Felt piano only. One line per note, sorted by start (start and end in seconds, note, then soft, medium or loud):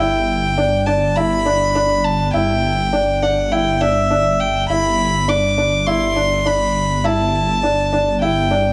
0.00 0.50 E4 medium
0.58 0.83 D4 medium
0.87 1.13 D4 medium
1.17 1.42 E4 medium
1.46 1.72 D4 medium
1.75 2.27 D4 medium
2.33 2.85 E4 loud
2.93 3.19 D4 medium
3.23 3.48 D4 medium
3.52 3.77 E4 loud
3.81 4.07 D4 medium
4.11 4.62 D4 medium
4.70 5.21 E4 medium
5.28 5.54 D4 medium
5.58 5.83 D4 medium
5.87 6.13 E4 loud
6.16 6.42 D4 medium
6.46 6.97 D4 medium
7.04 7.56 E4 loud
7.63 7.89 D4 medium
7.93 8.18 D4 medium
8.22 8.48 E4 medium
8.51 8.73 D4 medium